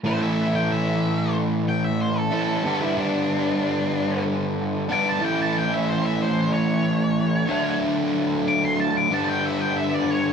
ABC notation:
X:1
M:4/4
L:1/16
Q:1/4=93
K:Amix
V:1 name="Lead electric guitar"
=c e2 g e4 z2 g e c A3- | A E D8 z4 d' a | g a g e =c e c2 ^c8 | z4 d' =c' a d' a g e g e d ^c2 |]
V:2 name="Distorted electric guitar" clef=bass
[A,,E,A,CE]12- [A,,E,A,CE]2 [A,,E,A,CE]2 | [G,,D,G,B,D]12- [G,,D,G,B,D]2 [G,,D,G,B,D]2 | [A,,E,A,CE]12- [A,,E,A,CE]2 [D,F,A,D]2- | [D,F,A,D]8 [G,,D,G,B,D]8 |]